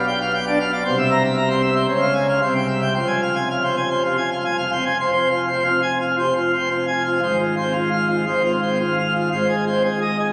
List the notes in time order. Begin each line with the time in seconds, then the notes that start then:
Already playing: B1 B2
0.08 G5
0.21 F5
0.34 G5
0.47 D4 D5
0.60 F5
0.72 D5
0.84 C2 C3 C5
0.99 E5
1.11 A#5
1.24 E5
1.37 A#5
1.50 C4 C5
1.62 E5
1.76 C5
1.88 C#2 C#3 C5
2.01 F5
2.14 G#5
2.28 F5
2.41 C2 C3 C5
2.55 G5
2.68 E5
2.81 G5
2.95 F1 F2 C5
3.07 G#5
3.22 F5
3.35 G#5
3.50 F5
3.63 C4 C5
3.77 G#5
3.90 C5
4.04 C3 F4
4.17 G#5
4.31 F5
4.45 G#5
4.58 F5
4.72 C4 C5
4.85 G#5
5.00 C5
5.13 F1 F2 C5
5.30 F4
5.48 C5
5.52 C4
5.64 F4
5.82 G#5
6.01 F4
6.18 C3 C5
6.36 F4
6.53 C5
6.59 C4
6.70 F4
6.87 G#5
7.05 F4
7.22 G#1 G#2 C5
7.39 F4
7.57 C5
7.61 C4
7.73 F4
7.92 F5
8.09 F4
8.26 G#1 G#2 C5
8.40 C4
8.45 F4
8.62 C5
8.67 C4
8.80 F4
8.98 F5
9.15 F4
9.32 G#1 G#2 C5
9.49 G#4
9.67 C5
9.72 C4
9.85 G#4
10.01 D#5
10.19 G#4